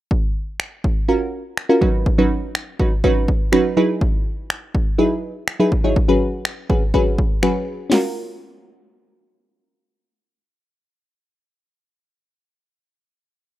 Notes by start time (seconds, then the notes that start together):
0.11 kick
0.60 finger snap
0.84 kick
1.08 C#4 F4 F#4 A#4
1.57 finger snap
1.69 C#4 F4 F#4 A#4
1.81 F#3 C#4 D#4 F#4 B4, kick
2.06 kick
2.18 F#3 C#4 D#4 F#4 B4
2.55 finger snap
2.79 F#3 C#4 D#4 F#4 B4, kick
3.04 F#3 C#4 D#4 F#4 B4, kick
3.28 kick
3.52 F#3 C#4 D#4 F#4 B4, finger snap
3.77 F#3 D#4 E4 G#4 B4
4.01 kick
4.50 finger snap
4.75 kick
4.98 F#3 D#4 E4 G#4 B4
5.48 finger snap
5.60 F#3 D#4 E4 G#4 B4
5.72 kick
5.84 F#3 D#4 E4 G#4 C#5
5.96 kick
6.08 F#3 C#4 F#4 G#4 B4
6.45 finger snap
6.69 F#3 C#4 F#4 G#4 B4, kick
6.94 F#3 C#4 F#4 G#4 B4, kick
7.18 kick
7.43 F#3 C#4 F#4 G#4 B4, finger snap
7.90 C#4 F4 F#4, snare, open hi-hat
7.94 A#4